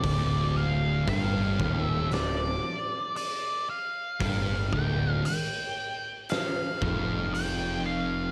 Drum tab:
HH |o-o-o-o-|o-o-o-o-|
SD |----o---|----o---|
BD |o-oo----|oo---o--|